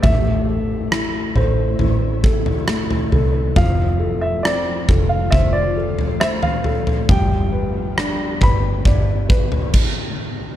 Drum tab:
CC |----------------|----------------|------------x---|
SD |----r-------r---|----r-------r---|----r-----------|
FT |o-----o-o--o-oo-|o-----o-o--o-ooo|o-----o-o--o----|
BD |o---------o-----|o-----o-o-------|o-----o-o-o-o---|